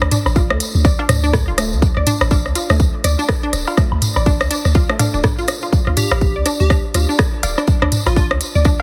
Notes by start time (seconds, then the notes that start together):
0.02 D2, cross-stick, low woodblock
0.11 D4, closed hi-hat, mid tom, tambourine
0.26 A1, cross-stick, tambourine, low woodblock
0.36 F4, kick, tambourine
0.50 D2 A3, cross-stick
0.60 closed hi-hat, tambourine
0.75 D2, tambourine
0.85 D5, kick, cross-stick, tambourine
0.99 D4, cowbell
1.09 D2, cross-stick, closed hi-hat, mid tom, tambourine
1.24 D4, tambourine
1.33 kick, cross-stick, mid tom, tambourine
1.48 D1 F4
1.58 A3, cross-stick, closed hi-hat, tambourine
1.72 D2, tambourine
1.82 kick, tambourine
1.97 D2 D5, cross-stick
2.07 D4, closed hi-hat, mid tom, tambourine
2.21 A1, cross-stick, tambourine, low woodblock
2.31 D4, kick, tambourine, cowbell
2.46 D2, cross-stick
2.55 F4, closed hi-hat, tambourine
2.70 D2 A3, cross-stick, tambourine
2.80 kick, tambourine
3.04 D2 D5, cross-stick, closed hi-hat, tambourine
3.19 D4, tambourine
3.29 kick, cross-stick, tambourine
3.43 D4
3.53 D1, cross-stick, closed hi-hat, tambourine
3.67 F4, tambourine, cowbell, low woodblock
3.77 A3, kick, cross-stick, tambourine
3.92 D2, low woodblock
4.02 closed hi-hat, mid tom, tambourine
4.16 A1 D5, cross-stick, tambourine, low woodblock
4.26 D4, kick, tambourine
4.41 D2, cross-stick, tambourine
4.51 D4, closed hi-hat, tambourine
4.65 D2, cross-stick, tambourine
4.75 F4, kick, tambourine
4.89 A3, cross-stick
4.99 D4, closed hi-hat, mid tom, tambourine, cowbell
5.14 D1 D4, tambourine
5.23 D4, kick, cross-stick, mid tom, tambourine
5.38 F4, tambourine
5.48 cross-stick, closed hi-hat, tambourine
5.62 F4, tambourine
5.73 kick, tambourine
5.87 D2 F4, cross-stick
5.97 D4 G4, closed hi-hat, mid tom, tambourine
6.11 A1, cross-stick, tambourine, cowbell, low woodblock
6.21 kick, tambourine
6.36 D2 D5
6.45 D4, cross-stick, closed hi-hat, tambourine
6.60 D2 G4, tambourine
6.70 D4, kick, cross-stick, tambourine
6.94 D2 F4, cross-stick, closed hi-hat, tambourine
7.09 D4, tambourine
7.19 kick, cross-stick, tambourine
7.43 D1 D5, closed hi-hat, tambourine, cowbell
7.58 D4, cross-stick, tambourine, low woodblock
7.67 kick, tambourine
7.82 D2 D4, cross-stick, low woodblock
7.92 closed hi-hat, mid tom, tambourine
8.06 A1 F4, cross-stick, tambourine, low woodblock
8.16 D4 F4, kick, tambourine
8.31 D2, cross-stick
8.41 closed hi-hat, tambourine
8.55 D2 D5, tambourine
8.65 D4, kick, cross-stick, tambourine